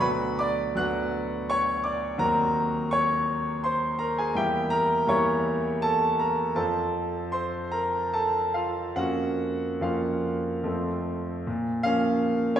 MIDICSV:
0, 0, Header, 1, 2, 480
1, 0, Start_track
1, 0, Key_signature, -5, "minor"
1, 0, Tempo, 740741
1, 21, Time_signature, 3, 2, 24, 8
1, 501, Tempo, 710900
1, 2901, Tempo, 738916
1, 4341, Tempo, 784314
1, 5301, Tempo, 847458
1, 6741, Tempo, 813008
1, 7221, Tempo, 724638
1, 7970, End_track
2, 0, Start_track
2, 0, Title_t, "Grand piano"
2, 0, Program_c, 0, 0
2, 0, Control_c, 0, 64, 127
2, 0, Note_on_c, 0, 38, 43
2, 0, Note_on_c, 0, 54, 34
2, 0, Note_on_c, 0, 59, 35
2, 3, Note_on_c, 0, 83, 74
2, 4, Note_on_c, 0, 66, 35
2, 8, Note_on_c, 0, 71, 57
2, 32, Control_c, 0, 64, 0
2, 126, Control_c, 0, 64, 127
2, 238, Note_off_c, 0, 71, 0
2, 251, Note_on_c, 0, 86, 79
2, 253, Note_off_c, 0, 83, 0
2, 261, Note_on_c, 0, 74, 62
2, 475, Note_off_c, 0, 38, 0
2, 475, Note_off_c, 0, 54, 0
2, 475, Note_off_c, 0, 59, 0
2, 478, Note_off_c, 0, 66, 0
2, 484, Note_off_c, 0, 74, 0
2, 487, Note_on_c, 0, 38, 40
2, 487, Note_on_c, 0, 54, 39
2, 495, Note_on_c, 0, 59, 36
2, 496, Note_off_c, 0, 86, 0
2, 497, Note_on_c, 0, 90, 73
2, 500, Note_on_c, 0, 66, 36
2, 507, Note_on_c, 0, 78, 58
2, 958, Note_off_c, 0, 78, 0
2, 980, Note_off_c, 0, 90, 0
2, 989, Note_on_c, 0, 85, 84
2, 995, Note_on_c, 0, 73, 60
2, 1211, Note_off_c, 0, 73, 0
2, 1219, Note_on_c, 0, 86, 61
2, 1224, Note_off_c, 0, 85, 0
2, 1230, Note_on_c, 0, 74, 43
2, 1428, Note_off_c, 0, 38, 0
2, 1428, Note_off_c, 0, 54, 0
2, 1432, Note_off_c, 0, 59, 0
2, 1435, Note_off_c, 0, 66, 0
2, 1449, Note_on_c, 0, 39, 42
2, 1450, Note_on_c, 0, 60, 37
2, 1451, Note_off_c, 0, 74, 0
2, 1454, Note_on_c, 0, 66, 36
2, 1456, Note_on_c, 0, 54, 36
2, 1459, Note_on_c, 0, 82, 73
2, 1461, Note_off_c, 0, 86, 0
2, 1465, Note_on_c, 0, 70, 55
2, 1475, Control_c, 0, 64, 0
2, 1600, Control_c, 0, 64, 127
2, 1920, Note_off_c, 0, 70, 0
2, 1944, Note_off_c, 0, 82, 0
2, 1944, Note_on_c, 0, 85, 81
2, 1955, Note_on_c, 0, 73, 62
2, 2399, Note_off_c, 0, 73, 0
2, 2421, Note_off_c, 0, 85, 0
2, 2434, Note_on_c, 0, 84, 69
2, 2445, Note_on_c, 0, 72, 51
2, 2656, Note_off_c, 0, 72, 0
2, 2666, Note_off_c, 0, 84, 0
2, 2671, Note_on_c, 0, 82, 69
2, 2677, Note_on_c, 0, 70, 49
2, 2781, Note_off_c, 0, 70, 0
2, 2786, Note_off_c, 0, 82, 0
2, 2804, Note_on_c, 0, 80, 60
2, 2810, Note_on_c, 0, 68, 50
2, 2868, Note_off_c, 0, 39, 0
2, 2868, Note_off_c, 0, 60, 0
2, 2870, Note_off_c, 0, 66, 0
2, 2871, Note_off_c, 0, 54, 0
2, 2908, Note_off_c, 0, 68, 0
2, 2912, Note_off_c, 0, 80, 0
2, 2914, Control_c, 0, 64, 0
2, 2914, Note_on_c, 0, 55, 34
2, 2918, Note_on_c, 0, 40, 41
2, 2926, Note_on_c, 0, 79, 72
2, 2927, Note_on_c, 0, 58, 36
2, 2927, Note_on_c, 0, 64, 37
2, 2930, Note_on_c, 0, 67, 51
2, 3011, Control_c, 0, 64, 127
2, 3135, Note_off_c, 0, 67, 0
2, 3144, Note_on_c, 0, 82, 80
2, 3148, Note_off_c, 0, 79, 0
2, 3156, Note_on_c, 0, 70, 56
2, 3367, Note_off_c, 0, 55, 0
2, 3369, Note_off_c, 0, 40, 0
2, 3369, Note_off_c, 0, 70, 0
2, 3374, Note_off_c, 0, 58, 0
2, 3374, Note_off_c, 0, 64, 0
2, 3378, Note_on_c, 0, 40, 44
2, 3379, Note_off_c, 0, 82, 0
2, 3385, Note_on_c, 0, 55, 34
2, 3391, Note_on_c, 0, 58, 37
2, 3393, Note_on_c, 0, 64, 36
2, 3394, Note_on_c, 0, 85, 71
2, 3399, Note_on_c, 0, 73, 59
2, 3843, Note_off_c, 0, 73, 0
2, 3867, Note_off_c, 0, 85, 0
2, 3871, Note_on_c, 0, 81, 81
2, 3878, Note_on_c, 0, 69, 57
2, 4094, Note_off_c, 0, 69, 0
2, 4106, Note_off_c, 0, 81, 0
2, 4113, Note_on_c, 0, 82, 60
2, 4120, Note_on_c, 0, 70, 41
2, 4317, Note_off_c, 0, 40, 0
2, 4321, Note_off_c, 0, 55, 0
2, 4324, Note_off_c, 0, 58, 0
2, 4325, Note_off_c, 0, 64, 0
2, 4336, Note_off_c, 0, 70, 0
2, 4346, Note_on_c, 0, 41, 45
2, 4347, Note_on_c, 0, 53, 36
2, 4348, Note_off_c, 0, 82, 0
2, 4349, Note_on_c, 0, 81, 65
2, 4352, Control_c, 0, 64, 0
2, 4352, Note_on_c, 0, 60, 37
2, 4356, Note_on_c, 0, 69, 51
2, 4462, Control_c, 0, 64, 127
2, 4789, Note_off_c, 0, 69, 0
2, 4810, Note_off_c, 0, 81, 0
2, 4815, Note_on_c, 0, 84, 68
2, 4824, Note_on_c, 0, 72, 54
2, 5043, Note_off_c, 0, 72, 0
2, 5055, Note_off_c, 0, 84, 0
2, 5058, Note_on_c, 0, 82, 65
2, 5067, Note_on_c, 0, 70, 49
2, 5292, Note_off_c, 0, 70, 0
2, 5304, Note_off_c, 0, 82, 0
2, 5313, Note_on_c, 0, 81, 68
2, 5318, Note_on_c, 0, 69, 50
2, 5531, Note_off_c, 0, 69, 0
2, 5544, Note_off_c, 0, 81, 0
2, 5544, Note_on_c, 0, 77, 54
2, 5547, Note_on_c, 0, 65, 42
2, 5758, Note_off_c, 0, 41, 0
2, 5758, Note_off_c, 0, 53, 0
2, 5760, Note_off_c, 0, 60, 0
2, 5766, Note_off_c, 0, 65, 0
2, 5780, Note_on_c, 0, 53, 33
2, 5780, Note_on_c, 0, 78, 70
2, 5781, Note_off_c, 0, 77, 0
2, 5781, Note_on_c, 0, 41, 35
2, 5784, Note_on_c, 0, 61, 30
2, 5786, Note_on_c, 0, 58, 31
2, 5790, Control_c, 0, 64, 0
2, 5795, Note_on_c, 0, 66, 49
2, 5896, Control_c, 0, 64, 127
2, 6247, Note_off_c, 0, 53, 0
2, 6247, Note_off_c, 0, 66, 0
2, 6248, Note_off_c, 0, 41, 0
2, 6249, Note_off_c, 0, 61, 0
2, 6250, Note_off_c, 0, 58, 0
2, 6260, Note_on_c, 0, 53, 34
2, 6261, Note_on_c, 0, 41, 40
2, 6262, Note_off_c, 0, 78, 0
2, 6267, Note_on_c, 0, 58, 32
2, 6268, Note_on_c, 0, 61, 33
2, 6269, Note_on_c, 0, 77, 48
2, 6274, Note_on_c, 0, 65, 35
2, 6720, Note_off_c, 0, 53, 0
2, 6721, Note_off_c, 0, 41, 0
2, 6728, Note_on_c, 0, 53, 34
2, 6730, Note_off_c, 0, 58, 0
2, 6730, Note_off_c, 0, 61, 0
2, 6730, Note_on_c, 0, 41, 38
2, 6735, Note_on_c, 0, 57, 33
2, 6737, Note_on_c, 0, 60, 31
2, 6753, Control_c, 0, 64, 0
2, 6858, Control_c, 0, 64, 127
2, 6971, Note_off_c, 0, 65, 0
2, 6992, Note_off_c, 0, 77, 0
2, 7200, Note_off_c, 0, 41, 0
2, 7200, Note_off_c, 0, 53, 0
2, 7203, Note_off_c, 0, 57, 0
2, 7204, Note_off_c, 0, 60, 0
2, 7221, Note_on_c, 0, 46, 48
2, 7232, Control_c, 0, 64, 0
2, 7335, Control_c, 0, 64, 127
2, 7458, Note_off_c, 0, 46, 0
2, 7463, Note_on_c, 0, 77, 84
2, 7472, Note_on_c, 0, 53, 39
2, 7473, Note_on_c, 0, 58, 39
2, 7477, Note_on_c, 0, 61, 46
2, 7919, Note_off_c, 0, 53, 0
2, 7920, Note_off_c, 0, 58, 0
2, 7922, Note_off_c, 0, 61, 0
2, 7941, Note_off_c, 0, 77, 0
2, 7944, Note_on_c, 0, 53, 40
2, 7944, Note_on_c, 0, 73, 73
2, 7946, Note_on_c, 0, 58, 41
2, 7946, Note_on_c, 0, 61, 44
2, 7970, Note_off_c, 0, 53, 0
2, 7970, Note_off_c, 0, 58, 0
2, 7970, Note_off_c, 0, 61, 0
2, 7970, Note_off_c, 0, 73, 0
2, 7970, End_track
0, 0, End_of_file